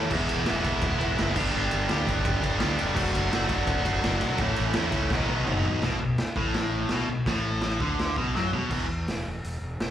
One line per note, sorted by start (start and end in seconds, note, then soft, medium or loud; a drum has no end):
0.00 0.11 A2 medium
0.00 0.10 E3 loud
0.00 0.12 A3 medium
0.00 0.12 C#4 medium
0.00 0.13 E4 loud
0.11 0.25 E1 medium
0.11 0.45 E3 medium
0.11 0.46 G#3 medium
0.11 0.49 B3 loud
0.11 kick loud
0.11 crash loud
0.16 0.49 E4 medium
0.29 0.45 E1 medium
0.29 ride medium
0.46 0.82 E3 medium
0.46 0.67 G#3 medium
0.46 0.65 B3 medium
0.46 snare loud
0.46 ride loud
0.50 0.63 E1 loud
0.50 0.62 E4 medium
0.63 0.79 E1 medium
0.63 1.00 B3 medium
0.63 0.98 E4 medium
0.63 kick medium
0.63 ride medium
0.68 1.02 G#3 medium
0.81 0.97 E1 loud
0.81 kick loud
0.81 ride loud
0.99 1.14 E1 loud
0.99 1.19 B3 medium
0.99 1.21 E4 medium
0.99 kick medium
0.99 ride medium
1.03 1.18 G#3 medium
1.18 1.33 F#1 medium
1.18 1.35 E3 medium
1.18 1.36 G#3 medium
1.18 1.35 B3 loud
1.18 snare loud
1.18 ride loud
1.22 1.34 E4 loud
1.34 1.50 G1 medium
1.34 1.54 B3 medium
1.34 1.56 D4 medium
1.34 1.56 G4 medium
1.34 kick loud
1.34 crash loud
1.39 1.51 G3 medium
1.53 1.69 G1 loud
1.53 1.87 G3 medium
1.53 1.89 B3 loud
1.53 1.90 D4 loud
1.58 1.91 G4 medium
1.71 1.86 G1 loud
1.71 ride medium
1.88 2.04 D2 medium
1.88 2.25 G3 medium
1.88 2.10 B3 medium
1.88 2.08 D4 medium
1.88 snare loud
1.88 ride loud
1.93 2.05 G4 medium
2.06 2.21 G1 medium
2.06 2.43 D4 medium
2.06 2.40 G4 medium
2.06 kick medium
2.06 ride medium
2.11 2.45 B3 medium
2.25 2.40 G1 loud
2.25 kick loud
2.25 ride loud
2.42 2.56 G1 medium
2.42 2.61 D4 medium
2.42 2.61 G4 medium
2.42 kick medium
2.42 ride medium
2.46 2.59 B3 medium
2.59 2.94 G3 loud
2.59 2.95 B3 loud
2.59 2.96 D4 loud
2.59 2.96 G4 loud
2.59 snare loud
2.59 ride loud
2.63 2.76 D2 medium
2.79 2.95 F1 loud
2.79 ride medium
2.95 3.10 F#1 loud
2.95 3.30 F#3 loud
2.95 3.32 A3 loud
2.95 3.33 D4 loud
2.95 kick loud
2.95 crash loud
3.00 3.34 F#4 loud
3.15 3.29 F#1 medium
3.15 ride medium
3.32 3.47 F#1 loud
3.32 3.68 F#3 medium
3.32 3.53 A3 medium
3.32 3.51 D4 medium
3.32 3.48 F#4 medium
3.32 snare loud
3.32 ride loud
3.49 3.64 F#1 medium
3.49 3.87 D4 medium
3.49 3.84 F#4 medium
3.49 kick medium
3.49 ride medium
3.54 3.88 A3 medium
3.67 3.81 F#1 medium
3.67 kick loud
3.67 ride loud
3.85 4.00 F#1 medium
3.85 4.02 A3 medium
3.85 4.04 D4 medium
3.85 4.04 F#4 medium
3.85 kick medium
3.85 ride medium
4.01 4.18 F#1 medium
4.01 4.37 F#3 loud
4.01 4.38 A3 loud
4.01 4.39 D4 medium
4.01 snare loud
4.01 ride loud
4.06 4.39 F#4 loud
4.21 4.36 B1 medium
4.21 ride medium
4.38 4.53 A1 medium
4.38 4.93 A2 medium
4.38 4.73 E3 loud
4.38 4.74 A3 loud
4.38 kick loud
4.38 ride loud
4.42 4.77 C#4 loud
4.42 4.78 E4 loud
4.56 4.73 A1 loud
4.56 ride medium
4.73 4.90 E2 loud
4.73 5.10 E3 medium
4.73 4.95 A3 medium
4.73 snare loud
4.73 ride loud
4.78 4.94 C#4 medium
4.78 4.90 E4 medium
4.92 5.06 C#2 medium
4.92 5.11 C#4 medium
4.92 5.09 E4 medium
4.92 kick medium
4.92 ride medium
4.97 5.12 A3 medium
5.10 5.25 B1 loud
5.10 5.44 B2 loud
5.10 5.45 D#3 medium
5.10 5.31 F#3 loud
5.10 5.29 B3 medium
5.10 kick loud
5.10 snare medium
5.16 5.26 D#4 loud
5.27 5.43 B1 medium
5.27 5.48 B3 medium
5.27 5.49 D#4 medium
5.27 high tom medium
5.32 5.46 F#3 medium
5.45 5.61 F#1 medium
5.45 5.81 B2 loud
5.45 5.81 D#3 loud
5.45 5.82 F#3 loud
5.45 5.83 B3 loud
5.45 mid tom loud
5.50 5.83 D#4 loud
5.65 5.79 B1 medium
5.65 floor tom medium
5.81 5.99 B1 medium
5.81 5.99 B2 medium
5.81 kick loud
5.81 snare loud
5.81 crash medium
6.00 6.17 B1 medium
6.00 6.15 B2 medium
6.18 snare loud
6.18 crash medium
6.36 6.86 A1 medium
6.36 6.90 A2 loud
6.36 kick loud
6.54 snare loud
6.54 crash medium
6.89 7.07 B1 medium
6.89 7.08 B2 loud
6.89 snare loud
6.89 crash medium
7.07 7.25 B1 medium
7.07 7.23 B2 medium
7.26 7.77 A1 medium
7.26 7.80 A2 loud
7.26 kick loud
7.26 snare loud
7.26 crash medium
7.61 snare loud
7.61 crash medium
7.80 8.14 D2 medium
7.80 8.17 D3 loud
7.80 kick loud
7.99 snare loud
7.99 crash medium
8.16 8.33 B1 medium
8.16 8.35 B2 loud
8.16 kick loud
8.35 8.51 F#2 medium
8.35 8.53 F#3 loud
8.35 snare medium
8.51 8.69 B1 medium
8.51 8.70 B2 loud
8.51 floor tom medium
8.70 8.87 E1 medium
8.70 8.85 E2 medium
8.70 8.85 B2 medium
8.70 8.86 E3 medium
8.70 kick loud
8.70 crash loud
8.90 9.05 E2 medium
9.07 9.23 E1 medium
9.07 snare loud
9.07 open hi-hat medium
9.28 9.42 E1 medium
9.44 9.60 E1 medium
9.44 open hi-hat medium
9.62 9.77 E1 medium
9.80 9.90 E1 medium
9.80 snare loud
9.80 open hi-hat soft